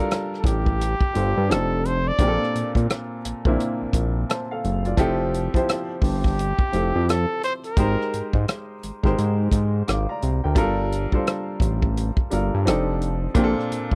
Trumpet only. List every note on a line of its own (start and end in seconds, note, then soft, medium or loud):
0.39 0.48 A4 medium
0.46 1.53 G4 medium
1.51 1.87 A4 medium
1.86 2.09 C5 medium
2.08 2.77 D5 loud
6.03 7.10 G4 medium
7.09 7.43 A4 medium
7.44 7.54 C5 medium
7.66 8.31 A#4 medium